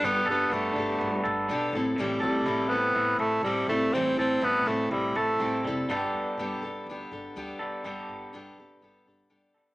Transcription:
X:1
M:4/4
L:1/8
Q:1/4=123
K:Gmix
V:1 name="Clean electric guitar"
[G,B,DA] A B, D B, A D A,, | A,, A E C E A C G, | A,, A E C E A C G, | [G,B,DA]6- [G,B,DA] [G,B,DA] |
[G,B,DA]6- [G,B,DA] [G,B,DA] |]
V:2 name="Steel-string acoustic guitar"
[G,B,DGA] [DGA] [B,DGA] [DGA]3 [B,DGA] [G,CEA] | [A,,E,G,CEA] [G,CEA] [G,CEA] [G,EA]3 [G,CEA] [G,CEA] | [A,,E,G,CEA] [G,CEA] [G,CEA] [G,CEA]3 [G,CEA] [G,CEA] | [G,B,DGA]2 [G,B,DGA] [DGA] [B,DGA] [DGA] [G,B,DGA]2 |
[G,B,DGA]2 [G,B,DGA] [GA] [B,DGA] [DGA] [G,B,DGA]2 |]
V:3 name="Alto saxophone"
B, B, A,4 z2 | G, G,2 B,2 A, G, A, | C C B, A, G, A,2 z | z8 |
z8 |]
V:4 name="Upright bass" clef=bass
G,,, G,,, G,,, G,,, G,,, G,,, B,,, A,,, | A,,, A,,, A,,,2 A,,, A,,, A,,, A,,, | A,,, A,,, A,,, A,,, A,,, A,,, A,,, F,,, | G,,, F,, G,,, G,,, D,, G,,, D,, G,,, |
G,,, G,,, G,,, G,,, G,,, G,,, G,,, z |]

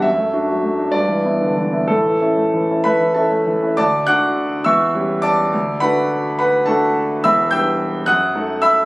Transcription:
X:1
M:6/8
L:1/16
Q:3/8=69
K:D
V:1 name="Grand piano"
e6 d6 | A6 [Beb]2 [Aea]4 | [dad']2 [fd'f']4 [ec'e']4 [dad']2- | [dad']2 [Bfb]4 [Bfb]2 [Afa]4 |
[ebe']2 [ge'g']4 [f^d'f']4 [ebe']2 |]
V:2 name="Grand piano"
F,, A, [DF] F, A, [DF] G,, E, [B,E] D, E, [B,E] | A,, E, [CE] A, E, [CE] A, E, [CE] A, E, [CE] | D,,2 [D,DF]4 E,,2 [G,CG]4 | D,,2 [A,DF]6 [A,DF]4 |
[E,,,E,,]2 [G,DB]4 F,,2 [A,^DA]4 |]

